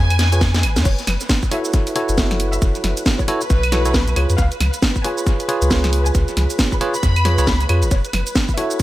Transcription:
Already playing: sub bass F2, string machine B4, violin section G#5
0.10 open hi-hat, claves, shaker
0.19 snare, open hi-hat
0.32 tine electric piano F4 G#4 B4 C#5, closed hi-hat, shaker
0.41 kick, snare, shaker
0.54 snare, closed hi-hat, shaker
0.63 sub bass G#1, open hi-hat, claves
0.76 sub bass F2, snare, closed hi-hat, shaker
0.85 sub bass F#1, string machine B4, violin section C#5, kick, closed hi-hat, crash, shaker
0.99 closed hi-hat, shaker
1.07 sub bass F#1, snare, open hi-hat, claves
1.21 closed hi-hat, shaker
1.29 kick, snare, shaker
1.43 kick, shaker
1.51 tine electric piano E4 F#4 A4 C#5, violin section E5, open hi-hat
1.65 shaker
1.74 kick, closed hi-hat, shaker
1.87 open hi-hat, shaker
1.96 tine electric piano E4 F#4 A4 C#5, open hi-hat
2.09 sub bass F#1, closed hi-hat, shaker
2.18 kick, snare, shaker
2.31 snare, closed hi-hat, shaker
2.40 open hi-hat
2.53 violin section E5, closed hi-hat, shaker
2.62 sub bass F#1, kick, closed hi-hat, shaker
2.75 closed hi-hat, shaker
2.84 sub bass F#1, snare, open hi-hat
2.97 closed hi-hat, shaker
3.06 kick, snare, shaker
3.19 violin section C#5, kick, shaker
3.28 tine electric piano E4 F#4 A4 C#5, open hi-hat
3.41 violin section B4, shaker
3.50 sub bass B1, kick, closed hi-hat, shaker
3.63 open hi-hat, claves, shaker
3.72 tine electric piano E4 F#4 A4 C#5, snare, open hi-hat
3.85 tine electric piano E4 F#4 A4 C#5, closed hi-hat, shaker
3.94 kick, snare, shaker
4.07 sub bass B1, closed hi-hat, shaker
4.16 sub bass C#2, tine electric piano F4 G#4 B4 C#5, open hi-hat, claves
4.29 sub bass F2, closed hi-hat, shaker
4.38 sub bass C#2, violin section F5, kick, closed hi-hat, shaker
4.52 closed hi-hat, shaker
4.60 sub bass C#2, snare, open hi-hat, claves
4.74 closed hi-hat, shaker
4.82 kick, snare, shaker
4.96 kick, shaker
5.04 tine electric piano F4 G#4 B4 C#5, violin section G#5, open hi-hat
5.18 shaker
5.27 kick, closed hi-hat, shaker
5.40 open hi-hat, shaker
5.49 tine electric piano F4 G#4 B4 C#5, open hi-hat
5.62 sub bass C#2, closed hi-hat, shaker
5.71 kick, snare, shaker
5.84 snare, closed hi-hat, shaker
5.93 open hi-hat
6.06 violin section G#5, closed hi-hat, shaker
6.15 sub bass C#2, kick, closed hi-hat, shaker
6.28 closed hi-hat, shaker
6.37 sub bass C#2, snare, open hi-hat
6.50 closed hi-hat, shaker
6.59 kick, snare, shaker
6.72 violin section B5, kick, shaker
6.81 tine electric piano F4 G#4 B4 C#5, open hi-hat
6.94 violin section B5, shaker
7.03 sub bass F2, kick, closed hi-hat, shaker
7.16 open hi-hat, claves, shaker
7.25 tine electric piano F4 G#4 B4 C#5, snare, open hi-hat
7.38 sub bass C#2, tine electric piano F4 G#4 B4 C#5, closed hi-hat, shaker
7.47 kick, snare, shaker
7.60 closed hi-hat, shaker
7.69 sub bass F2, tine electric piano F4 G#4 B4 C#5, open hi-hat, claves
7.82 sub bass G#1, closed hi-hat, shaker
7.91 sub bass F#1, violin section C#5, kick, closed hi-hat, shaker
8.05 closed hi-hat, shaker
8.13 sub bass F#1, snare, open hi-hat, claves
8.27 closed hi-hat, shaker
8.36 kick, snare, shaker
8.49 kick, shaker
8.57 tine electric piano E4 F#4 A4 C#5, violin section E5, open hi-hat
8.71 shaker

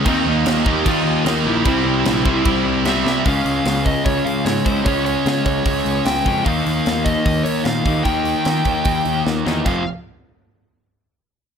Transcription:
0.05 picked electric bass D#2, overdriven electric guitar D#3 A#3 D#4, distorted electric guitar D#3 G3 A#3 D#4, lead electric guitar C4, kick, crash
0.26 picked electric bass D#2, lead electric guitar A#3
0.46 picked electric bass D#2, snare, crash
0.66 picked electric bass D#2, overdriven electric guitar D#3 A#3 D#4, lead electric guitar G4, kick
0.85 picked electric bass D#2, distorted electric guitar D#3 G3 A#3 D#4, lead electric guitar F4, kick, crash
1.05 picked electric bass D#2
1.25 picked electric bass D#2, overdriven electric guitar D#3 A#3 D#4, snare, crash
1.45 picked electric bass A#1, lead electric guitar E4
1.65 picked electric bass C2, distorted electric guitar C3 G3 C4 E4, overdriven electric guitar C3 G3 C4, kick, crash
1.85 picked electric bass C2
2.05 picked electric bass A#1, snare, crash
2.25 picked electric bass C2, overdriven electric guitar C3 G3 C4, kick
2.44 picked electric bass C2, distorted electric guitar C3 G3 C4 E4, kick, crash
2.65 picked electric bass C2
2.85 picked electric bass C2, overdriven electric guitar C3 G3 C4, lead electric guitar E5, snare, crash
3.06 picked electric bass C2, snare
3.24 picked electric bass C#2, overdriven electric guitar C#3 G#3 C#4, lead electric guitar F5, kick, open hi-hat
3.45 picked electric bass C#2, open hi-hat
3.66 picked electric bass C#2, snare, open hi-hat
3.86 lead electric guitar D#5, kick, open hi-hat
4.05 picked electric bass C#2, lead electric guitar C#5, kick, open hi-hat
4.25 picked electric bass C#3, lead electric guitar F5, open hi-hat
4.45 picked electric bass G#2, lead electric guitar C#5, snare, open hi-hat
4.65 picked electric bass C#2, overdriven electric guitar C#3 G#3 C#4, lead electric guitar C5, kick, open hi-hat
4.85 picked electric bass C#2, overdriven electric guitar C#3 G#3 C#4, lead electric guitar C#5, kick, open hi-hat
5.06 lead electric guitar C#5, open hi-hat
5.26 picked electric bass C#3, snare, open hi-hat
5.45 picked electric bass C#2, lead electric guitar C#5, kick, open hi-hat
5.65 picked electric bass C#2, kick, open hi-hat
5.86 picked electric bass C#2, open hi-hat
6.05 picked electric bass C#2, lead electric guitar G5, snare, open hi-hat
6.25 picked electric bass F2, overdriven electric guitar C#3 G#3 C#4, kick, open hi-hat
6.45 picked electric bass D#2, overdriven electric guitar D#3 A#3 D#4, lead electric guitar F5, kick, open hi-hat
6.66 picked electric bass D#2, open hi-hat
6.86 picked electric bass D#2, snare, open hi-hat
7.05 lead electric guitar D#5, kick, open hi-hat
7.26 picked electric bass D#2, kick, open hi-hat
7.44 picked electric bass D#3, lead electric guitar C#5, open hi-hat
7.64 picked electric bass A#2, lead electric guitar F5, snare, open hi-hat
7.85 picked electric bass D#2, overdriven electric guitar D#3 A#3 D#4, kick, open hi-hat
8.04 picked electric bass D#2, overdriven electric guitar D#3 A#3 D#4, lead electric guitar G5, kick, open hi-hat
8.25 open hi-hat
8.45 picked electric bass D#3, snare, open hi-hat
8.65 picked electric bass D#2, kick, open hi-hat
8.85 picked electric bass D#2, kick, open hi-hat
9.05 picked electric bass D#2, open hi-hat
9.27 picked electric bass D#2, snare
9.45 picked electric bass E2, overdriven electric guitar D#3 A#3 D#4, snare
9.65 picked electric bass F1, overdriven electric guitar F2 C3 F3, lead electric guitar F5, kick, crash

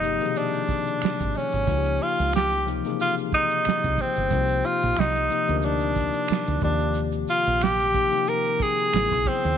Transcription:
Already playing: fingered electric bass G1, tine electric piano C3 F3 A#3 D#4 G4, tenor saxophone D#4
0.01 tine electric piano C3 F3 A#3 D#4 G4, closed hi-hat, maracas
0.20 tine electric piano B2 D#3 F3 A#3 G#4, snare, closed hi-hat, maracas
0.26 tine electric piano C3
0.36 tenor saxophone D4, closed hi-hat, maracas
0.53 closed hi-hat, maracas
0.69 kick, closed hi-hat, maracas
0.87 closed hi-hat, maracas
1.02 finger snap, muted fingered electric bass stroke, snare, maracas
1.06 finger snap
1.19 fingered electric bass G#1, kick, closed hi-hat, maracas
1.34 tenor saxophone C#4, snare, open hi-hat, maracas
1.52 fingered electric bass G#1, closed hi-hat, maracas
1.67 fingered electric bass C#2, tine electric piano C#3 F3 A#3 D#4 F#4, kick, closed hi-hat, maracas
1.76 tine electric piano G4
1.85 closed hi-hat, maracas
2.02 tenor saxophone F4, closed hi-hat
2.19 fingered electric bass C#2, closed hi-hat, maracas
2.33 tenor saxophone G4, finger snap, snare, maracas
2.38 finger snap
2.52 closed hi-hat, maracas
2.65 tine electric piano C3 F3 A#3 D#4 G4, closed hi-hat, maracas
2.84 tine electric piano C3 E3 A#3 D#4 G#4, closed hi-hat, maracas
2.88 tine electric piano F3, snare
3.00 tenor saxophone F4, closed hi-hat, maracas
3.18 closed hi-hat, maracas
3.33 tenor saxophone D#4, kick, closed hi-hat, maracas
3.50 closed hi-hat, maracas
3.65 finger snap, muted fingered electric bass stroke, snare, maracas
3.70 finger snap
3.83 fingered electric bass C2, kick, closed hi-hat, maracas
3.98 tenor saxophone C4, kick, snare, closed hi-hat, maracas
4.15 fingered electric bass G1, closed hi-hat, maracas
4.30 fingered electric bass C2, tine electric piano C3 F3 A#3 D#4 F#4, kick, closed hi-hat, maracas
4.41 tine electric piano G4
4.48 closed hi-hat, maracas
4.65 tenor saxophone F4, closed hi-hat
4.82 fingered electric bass A#1, closed hi-hat, maracas
4.97 fingered electric bass C2, tenor saxophone D#4, finger snap, snare, maracas
5.01 finger snap
5.15 closed hi-hat, maracas
5.29 tine electric piano C3 F3 A#3 D#4 G4, closed hi-hat, maracas
5.47 fingered electric bass D2, tine electric piano C3 F3 A#3 D4 A#4, closed hi-hat, maracas
5.56 tine electric piano D4, tenor saxophone D#4
5.62 tenor saxophone D4, closed hi-hat, maracas
5.80 closed hi-hat, maracas
5.96 kick, closed hi-hat, maracas
6.13 closed hi-hat, maracas
6.28 finger snap, muted fingered electric bass stroke, snare, maracas
6.33 finger snap
6.46 fingered electric bass D2, closed hi-hat, maracas
6.61 fingered electric bass D#2, tine electric piano C3 D#3 F3 A#3 G4, tenor saxophone D4, kick, snare, closed hi-hat, maracas
6.79 closed hi-hat, maracas
6.94 closed hi-hat, maracas
7.12 closed hi-hat, maracas
7.28 tenor saxophone F4, closed hi-hat, maracas
7.46 fingered electric bass A#1, closed hi-hat, maracas
7.61 tenor saxophone G4, finger snap, snare, maracas
7.65 finger snap
7.80 closed hi-hat, maracas
7.93 tine electric piano C3 F3 A#3 D#4 G4, kick, closed hi-hat, maracas
8.11 tine electric piano C3 F3 A#3 D#4 G5, closed hi-hat, maracas
8.15 snare
8.27 tenor saxophone A#4, closed hi-hat, maracas
8.44 closed hi-hat, maracas
8.60 tenor saxophone G#4, kick, closed hi-hat
8.78 closed hi-hat, maracas
8.92 fingered electric bass A1, tine electric piano C#3 F#3 B3 E4 G#4, finger snap, snare, maracas
8.97 finger snap
9.10 fingered electric bass B1, kick, closed hi-hat, maracas
9.26 tenor saxophone C4, kick, snare, closed hi-hat, maracas
9.44 fingered electric bass D#2, closed hi-hat, maracas

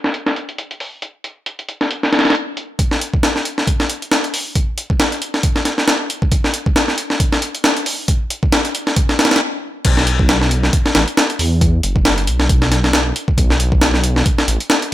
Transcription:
0.04 snare
0.14 closed hi-hat
0.26 snare
0.36 closed hi-hat
0.49 closed hi-hat
0.58 closed hi-hat
0.71 closed hi-hat
0.80 open hi-hat
1.02 closed hi-hat
1.24 closed hi-hat
1.46 closed hi-hat
1.59 closed hi-hat
1.69 closed hi-hat
1.81 snare
1.91 closed hi-hat
2.03 snare
2.13 snare, closed hi-hat
2.19 snare, closed hi-hat
2.25 snare, closed hi-hat
2.30 snare, closed hi-hat
2.35 closed hi-hat
2.57 closed hi-hat
2.79 kick, closed hi-hat
2.91 snare
3.01 closed hi-hat
3.14 kick
3.23 snare, closed hi-hat
3.36 snare
3.45 closed hi-hat
3.58 snare
3.67 kick, closed hi-hat
3.80 snare
3.90 closed hi-hat
4.02 closed hi-hat
4.12 snare, closed hi-hat
4.24 closed hi-hat
4.34 open hi-hat
4.55 kick, closed hi-hat
4.78 closed hi-hat
4.90 kick
5.00 snare, closed hi-hat
5.12 closed hi-hat
5.22 closed hi-hat
5.34 snare
5.43 kick, closed hi-hat
5.56 snare
5.65 snare, closed hi-hat
5.78 snare
5.88 snare, closed hi-hat
6.10 closed hi-hat
6.22 kick
6.32 kick, closed hi-hat
6.44 snare
6.54 closed hi-hat
6.66 kick
6.76 snare, closed hi-hat
6.88 snare
6.98 closed hi-hat
7.10 snare
7.20 kick, closed hi-hat
7.32 snare
7.42 closed hi-hat
7.55 closed hi-hat
7.64 snare, closed hi-hat
7.77 closed hi-hat
7.86 open hi-hat
8.08 kick, closed hi-hat
8.30 closed hi-hat
8.43 kick
8.52 snare, closed hi-hat
8.65 closed hi-hat
8.75 closed hi-hat
8.87 snare
8.96 kick, closed hi-hat
9.09 snare
9.19 snare, closed hi-hat
9.25 snare, closed hi-hat
9.31 snare, closed hi-hat
9.36 snare, closed hi-hat
9.85 detuned saw bass B1, kick, closed hi-hat, crash
9.97 snare
10.07 closed hi-hat
10.19 kick
10.29 snare, closed hi-hat
10.41 snare
10.51 closed hi-hat
10.63 snare
10.73 kick, closed hi-hat
10.86 snare
10.95 detuned saw bass A1, snare, closed hi-hat
11.08 closed hi-hat
11.17 snare, closed hi-hat
11.30 closed hi-hat
11.39 detuned saw bass E2, open hi-hat
11.61 kick, closed hi-hat
11.83 detuned saw bass F#1, closed hi-hat
11.96 kick
12.05 snare, closed hi-hat
12.18 closed hi-hat
12.27 detuned saw bass B1, closed hi-hat
12.40 snare
12.49 kick, closed hi-hat
12.62 snare
12.72 snare, closed hi-hat
12.84 snare
12.93 snare, closed hi-hat
13.16 closed hi-hat
13.28 kick
13.38 detuned saw bass B1, kick, closed hi-hat
13.50 snare
13.60 closed hi-hat
13.72 kick
13.81 snare, closed hi-hat
13.94 snare
14.04 closed hi-hat
14.16 snare
14.26 kick, closed hi-hat
14.38 snare
14.48 detuned saw bass A1, closed hi-hat
14.60 closed hi-hat
14.70 snare, closed hi-hat
14.82 closed hi-hat

